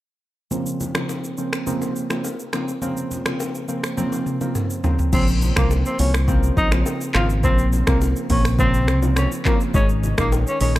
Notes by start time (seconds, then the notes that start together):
0.51 C#3 F3 A#3 C4, low conga, shaker
0.66 shaker
0.80 low bongo, low conga, shaker
0.95 C#3 F3 A#3 C4, finger snap, cross-stick, low bongo, shaker
1.09 high bongo, shaker
1.24 shaker
1.38 C#3 F3 A#3 C4, shaker
1.53 finger snap, cross-stick, shaker
1.66 C#3 F3 A#3 C4, low conga, shaker
1.82 high bongo, shaker
1.96 shaker
2.10 C#3 F3 A#3 C4, finger snap, cross-stick, low bongo, shaker
2.24 high bongo, shaker
2.40 shaker
2.53 C#3 F3 A#3 C4, finger snap, cross-stick, high bongo, low bongo, shaker
2.68 shaker
2.82 C#3 F3 A#3 C4, low conga, shaker
2.97 shaker
3.11 low bongo, low conga, shaker
3.26 C#3 F3 A#3 C4, finger snap, cross-stick, low bongo, shaker
3.40 high bongo, shaker
3.55 shaker
3.68 C#3 F3 A#3 C4, shaker
3.84 finger snap, cross-stick, shaker
3.97 C#3 F3 A#3 C4, high tom, low conga, shaker
4.12 high bongo, shaker
4.26 mid tom, shaker
4.41 C#3 F3 A#3 C4, mid tom, low bongo, shaker
4.55 mid tom, high bongo, shaker
4.70 shaker
4.84 C#3 F3 A#3 C4, floor tom, high bongo, low bongo, shaker
4.99 floor tom, shaker
5.12 A#1 C#3 F3 A#3 C4, kick, crash, low conga, shaker
5.28 shaker
5.42 low bongo, low conga, shaker
5.56 C2 C#3 F3 A#3 C4, finger snap, kick, cross-stick, shaker
5.71 high bongo, shaker
5.86 C4, shaker
5.99 C2 C#3 F3 A#3 C4 C#4, open hi-hat, shaker
6.14 finger snap, cross-stick, shaker
6.28 C#3 F3 A#3 C4, kick, low conga, shaker
6.43 shaker
6.57 A#1 D#4, kick, shaker
6.72 C#3 F3 A#3 C4, finger snap, cross-stick, low bongo, shaker
6.86 high bongo, shaker
7.01 shaker
7.14 G#1 C#3 F3 A#3 C4 F4, finger snap, cross-stick, clap, low bongo, shaker
7.30 shaker
7.43 A#1 C#3 F3 A#3 C4, kick, low conga, shaker
7.58 shaker
7.73 low bongo, low conga, shaker
7.87 C2 C#3 F3 A#3 C4, finger snap, kick, cross-stick, shaker
8.01 high bongo, shaker
8.16 shaker
8.30 A#1 C#3 F3 A#3 C4 C#4, kick, open hi-hat, shaker
8.45 finger snap, cross-stick, shaker
8.59 C#3 F3 A#3 C4, kick, low conga, shaker
8.74 shaker
8.88 C2, finger snap, cross-stick, shaker
9.02 C#3 F3 A#3 C4, low bongo, shaker
9.16 C#4, finger snap, cross-stick, high bongo, shaker
9.32 shaker
9.45 C#3 F3 A#3 C4, kick, clap, low bongo, shaker
9.60 shaker
9.74 G#1 D#3 G#3 C#4 D#4, kick, low conga, shaker
9.89 shaker
10.03 low bongo, low conga, shaker
10.18 A#1 D#3 G#3 A#3 C#4 D#4, finger snap, kick, cross-stick, shaker
10.32 high bongo, shaker
10.47 C#4, shaker
10.61 A#1 D#3 G#3 C#4 D#4, open hi-hat, shaker
10.76 finger snap, cross-stick, shaker